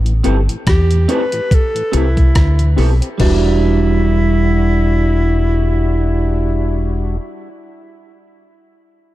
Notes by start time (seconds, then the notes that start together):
Already playing: A1
0.05 A2 E3, closed hi-hat
0.24 G1 A3 C4 E4 G4 A4 B4, closed hi-hat
0.49 A2 E3, closed hi-hat
0.67 E2 G4, kick, cross-stick, closed hi-hat
0.91 A2 E3, closed hi-hat
1.08 A3 C4 E4 G4 A4 B4, closed hi-hat
1.32 A2 E3 G4 B4, closed hi-hat
1.51 A4, kick, closed hi-hat
1.75 A2 E3, closed hi-hat
1.92 C2 A3 C4 E4 G4 A4 B4, closed hi-hat
1.97 E4
2.17 A2 E3, kick, closed hi-hat
2.35 D2, kick, cross-stick, closed hi-hat
2.59 A2 E3, closed hi-hat
2.76 B1 A3 C4 E4 G4 A4 B4, open hi-hat
3.01 C4 G4, closed hi-hat
3.18 E1 G3 D4 E4 F#4 G4 B4, kick, crash
3.23 F#4